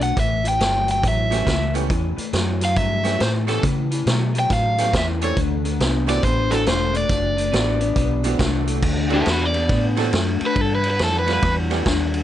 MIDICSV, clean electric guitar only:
0, 0, Header, 1, 2, 480
1, 0, Start_track
1, 0, Tempo, 432900
1, 190, Time_signature, 4, 2, 24, 8
1, 13562, End_track
2, 0, Start_track
2, 0, Title_t, "Clean electric guitar"
2, 0, Program_c, 0, 27
2, 5, Note_on_c, 0, 50, 77
2, 13, Note_on_c, 0, 57, 81
2, 165, Note_off_c, 0, 50, 0
2, 169, Note_off_c, 0, 57, 0
2, 181, Note_on_c, 0, 45, 72
2, 183, Note_on_c, 0, 52, 80
2, 463, Note_off_c, 0, 45, 0
2, 464, Note_off_c, 0, 52, 0
2, 488, Note_on_c, 0, 45, 77
2, 495, Note_on_c, 0, 52, 75
2, 640, Note_off_c, 0, 45, 0
2, 650, Note_off_c, 0, 52, 0
2, 654, Note_on_c, 0, 45, 81
2, 658, Note_on_c, 0, 54, 86
2, 939, Note_off_c, 0, 45, 0
2, 941, Note_off_c, 0, 54, 0
2, 966, Note_on_c, 0, 45, 64
2, 974, Note_on_c, 0, 54, 74
2, 1122, Note_off_c, 0, 45, 0
2, 1129, Note_off_c, 0, 54, 0
2, 1136, Note_on_c, 0, 45, 87
2, 1142, Note_on_c, 0, 54, 90
2, 1420, Note_off_c, 0, 45, 0
2, 1423, Note_off_c, 0, 54, 0
2, 1450, Note_on_c, 0, 45, 72
2, 1452, Note_on_c, 0, 54, 80
2, 1603, Note_off_c, 0, 45, 0
2, 1608, Note_off_c, 0, 54, 0
2, 1616, Note_on_c, 0, 45, 79
2, 1622, Note_on_c, 0, 52, 82
2, 1900, Note_off_c, 0, 45, 0
2, 1903, Note_off_c, 0, 52, 0
2, 1925, Note_on_c, 0, 45, 71
2, 1934, Note_on_c, 0, 52, 78
2, 2085, Note_off_c, 0, 45, 0
2, 2089, Note_off_c, 0, 52, 0
2, 2104, Note_on_c, 0, 45, 78
2, 2114, Note_on_c, 0, 52, 83
2, 2384, Note_off_c, 0, 45, 0
2, 2389, Note_off_c, 0, 52, 0
2, 2400, Note_on_c, 0, 45, 67
2, 2408, Note_on_c, 0, 52, 72
2, 2562, Note_off_c, 0, 45, 0
2, 2566, Note_off_c, 0, 52, 0
2, 2582, Note_on_c, 0, 45, 81
2, 2583, Note_on_c, 0, 54, 95
2, 2863, Note_off_c, 0, 45, 0
2, 2863, Note_off_c, 0, 54, 0
2, 2888, Note_on_c, 0, 45, 66
2, 2895, Note_on_c, 0, 54, 76
2, 3046, Note_off_c, 0, 45, 0
2, 3049, Note_off_c, 0, 54, 0
2, 3066, Note_on_c, 0, 45, 78
2, 3069, Note_on_c, 0, 54, 85
2, 3345, Note_off_c, 0, 45, 0
2, 3346, Note_off_c, 0, 54, 0
2, 3365, Note_on_c, 0, 45, 76
2, 3375, Note_on_c, 0, 54, 77
2, 3519, Note_off_c, 0, 45, 0
2, 3529, Note_off_c, 0, 54, 0
2, 3532, Note_on_c, 0, 45, 72
2, 3541, Note_on_c, 0, 52, 83
2, 3818, Note_off_c, 0, 45, 0
2, 3822, Note_off_c, 0, 52, 0
2, 3849, Note_on_c, 0, 45, 71
2, 3851, Note_on_c, 0, 52, 77
2, 4006, Note_off_c, 0, 45, 0
2, 4007, Note_off_c, 0, 52, 0
2, 4026, Note_on_c, 0, 45, 82
2, 4031, Note_on_c, 0, 52, 97
2, 4305, Note_off_c, 0, 45, 0
2, 4307, Note_off_c, 0, 52, 0
2, 4333, Note_on_c, 0, 45, 73
2, 4339, Note_on_c, 0, 52, 77
2, 4488, Note_off_c, 0, 45, 0
2, 4491, Note_off_c, 0, 52, 0
2, 4504, Note_on_c, 0, 45, 81
2, 4511, Note_on_c, 0, 54, 82
2, 4784, Note_off_c, 0, 45, 0
2, 4787, Note_off_c, 0, 54, 0
2, 4814, Note_on_c, 0, 45, 70
2, 4820, Note_on_c, 0, 54, 83
2, 4969, Note_off_c, 0, 45, 0
2, 4972, Note_off_c, 0, 54, 0
2, 4987, Note_on_c, 0, 45, 74
2, 4995, Note_on_c, 0, 54, 94
2, 5265, Note_off_c, 0, 45, 0
2, 5269, Note_off_c, 0, 54, 0
2, 5300, Note_on_c, 0, 45, 68
2, 5309, Note_on_c, 0, 54, 86
2, 5451, Note_off_c, 0, 45, 0
2, 5456, Note_off_c, 0, 54, 0
2, 5474, Note_on_c, 0, 45, 77
2, 5480, Note_on_c, 0, 52, 99
2, 5749, Note_off_c, 0, 45, 0
2, 5751, Note_off_c, 0, 52, 0
2, 5777, Note_on_c, 0, 45, 69
2, 5787, Note_on_c, 0, 52, 83
2, 5930, Note_off_c, 0, 45, 0
2, 5935, Note_off_c, 0, 52, 0
2, 5954, Note_on_c, 0, 50, 76
2, 5955, Note_on_c, 0, 57, 91
2, 6229, Note_off_c, 0, 50, 0
2, 6229, Note_off_c, 0, 57, 0
2, 6258, Note_on_c, 0, 50, 74
2, 6270, Note_on_c, 0, 57, 87
2, 6410, Note_off_c, 0, 50, 0
2, 6416, Note_off_c, 0, 57, 0
2, 6430, Note_on_c, 0, 50, 81
2, 6438, Note_on_c, 0, 59, 91
2, 6706, Note_off_c, 0, 50, 0
2, 6711, Note_off_c, 0, 59, 0
2, 6736, Note_on_c, 0, 50, 71
2, 6737, Note_on_c, 0, 59, 75
2, 6890, Note_off_c, 0, 50, 0
2, 6890, Note_off_c, 0, 59, 0
2, 6910, Note_on_c, 0, 50, 84
2, 6914, Note_on_c, 0, 59, 97
2, 7187, Note_off_c, 0, 50, 0
2, 7189, Note_off_c, 0, 59, 0
2, 7209, Note_on_c, 0, 50, 70
2, 7215, Note_on_c, 0, 59, 71
2, 7366, Note_off_c, 0, 50, 0
2, 7369, Note_off_c, 0, 59, 0
2, 7381, Note_on_c, 0, 50, 76
2, 7383, Note_on_c, 0, 57, 80
2, 7662, Note_off_c, 0, 50, 0
2, 7663, Note_off_c, 0, 57, 0
2, 7686, Note_on_c, 0, 50, 75
2, 7692, Note_on_c, 0, 57, 86
2, 7844, Note_off_c, 0, 50, 0
2, 7848, Note_off_c, 0, 57, 0
2, 7861, Note_on_c, 0, 50, 81
2, 7863, Note_on_c, 0, 57, 92
2, 8142, Note_off_c, 0, 50, 0
2, 8143, Note_off_c, 0, 57, 0
2, 8169, Note_on_c, 0, 50, 72
2, 8175, Note_on_c, 0, 57, 77
2, 8321, Note_off_c, 0, 50, 0
2, 8329, Note_off_c, 0, 57, 0
2, 8334, Note_on_c, 0, 50, 84
2, 8337, Note_on_c, 0, 59, 96
2, 8619, Note_off_c, 0, 50, 0
2, 8620, Note_off_c, 0, 59, 0
2, 8648, Note_on_c, 0, 50, 69
2, 8653, Note_on_c, 0, 59, 79
2, 8805, Note_off_c, 0, 50, 0
2, 8808, Note_off_c, 0, 59, 0
2, 8823, Note_on_c, 0, 50, 76
2, 8827, Note_on_c, 0, 59, 90
2, 9103, Note_off_c, 0, 50, 0
2, 9105, Note_off_c, 0, 59, 0
2, 9135, Note_on_c, 0, 50, 70
2, 9142, Note_on_c, 0, 59, 78
2, 9289, Note_off_c, 0, 50, 0
2, 9293, Note_off_c, 0, 59, 0
2, 9306, Note_on_c, 0, 50, 79
2, 9309, Note_on_c, 0, 57, 96
2, 9585, Note_off_c, 0, 50, 0
2, 9587, Note_off_c, 0, 57, 0
2, 9613, Note_on_c, 0, 50, 73
2, 9618, Note_on_c, 0, 57, 82
2, 9768, Note_off_c, 0, 50, 0
2, 9771, Note_off_c, 0, 57, 0
2, 9787, Note_on_c, 0, 50, 80
2, 9795, Note_on_c, 0, 57, 90
2, 10065, Note_off_c, 0, 50, 0
2, 10069, Note_off_c, 0, 57, 0
2, 10093, Note_on_c, 0, 50, 69
2, 10096, Note_on_c, 0, 57, 77
2, 10248, Note_off_c, 0, 50, 0
2, 10250, Note_off_c, 0, 57, 0
2, 10269, Note_on_c, 0, 50, 77
2, 10269, Note_on_c, 0, 59, 91
2, 10546, Note_off_c, 0, 50, 0
2, 10547, Note_off_c, 0, 59, 0
2, 10580, Note_on_c, 0, 50, 73
2, 10587, Note_on_c, 0, 59, 77
2, 10732, Note_off_c, 0, 50, 0
2, 10736, Note_off_c, 0, 59, 0
2, 10757, Note_on_c, 0, 50, 77
2, 10764, Note_on_c, 0, 59, 96
2, 11031, Note_off_c, 0, 50, 0
2, 11034, Note_off_c, 0, 59, 0
2, 11060, Note_on_c, 0, 50, 69
2, 11069, Note_on_c, 0, 59, 81
2, 11212, Note_off_c, 0, 50, 0
2, 11216, Note_off_c, 0, 59, 0
2, 11228, Note_on_c, 0, 50, 79
2, 11238, Note_on_c, 0, 57, 85
2, 11506, Note_off_c, 0, 50, 0
2, 11511, Note_off_c, 0, 57, 0
2, 11548, Note_on_c, 0, 50, 71
2, 11551, Note_on_c, 0, 57, 91
2, 11696, Note_off_c, 0, 50, 0
2, 11698, Note_off_c, 0, 57, 0
2, 11713, Note_on_c, 0, 43, 78
2, 11722, Note_on_c, 0, 50, 86
2, 11989, Note_off_c, 0, 43, 0
2, 11993, Note_off_c, 0, 50, 0
2, 12030, Note_on_c, 0, 43, 67
2, 12033, Note_on_c, 0, 50, 78
2, 12178, Note_off_c, 0, 43, 0
2, 12179, Note_off_c, 0, 50, 0
2, 12198, Note_on_c, 0, 43, 75
2, 12203, Note_on_c, 0, 52, 85
2, 12472, Note_off_c, 0, 43, 0
2, 12474, Note_off_c, 0, 52, 0
2, 12507, Note_on_c, 0, 43, 68
2, 12514, Note_on_c, 0, 52, 80
2, 12656, Note_off_c, 0, 43, 0
2, 12660, Note_off_c, 0, 52, 0
2, 12681, Note_on_c, 0, 43, 84
2, 12687, Note_on_c, 0, 52, 85
2, 12954, Note_off_c, 0, 43, 0
2, 12957, Note_off_c, 0, 52, 0
2, 12989, Note_on_c, 0, 43, 75
2, 12998, Note_on_c, 0, 52, 83
2, 13138, Note_off_c, 0, 43, 0
2, 13142, Note_off_c, 0, 52, 0
2, 13150, Note_on_c, 0, 43, 80
2, 13153, Note_on_c, 0, 50, 86
2, 13429, Note_off_c, 0, 43, 0
2, 13430, Note_off_c, 0, 50, 0
2, 13464, Note_on_c, 0, 43, 79
2, 13467, Note_on_c, 0, 50, 77
2, 13562, Note_off_c, 0, 43, 0
2, 13562, Note_off_c, 0, 50, 0
2, 13562, End_track
0, 0, End_of_file